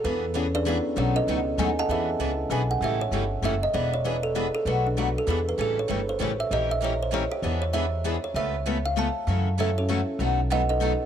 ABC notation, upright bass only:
X:1
M:3/4
L:1/8
Q:"Swing" 1/4=195
K:Bdor
V:1 name="Upright bass" clef=bass
E,,6 | B,,,2 C,,2 ^D,,2 | E,,2 C,,2 B,,,2 | A,,,2 =G,,,2 F,,,2 |
E,,,6 | B,,,4 E,,2 | A,,,2 =G,,,2 A,,,2 | ^A,,,6 |
E,,6 | C,,6 | F,,6 | B,,,6 |]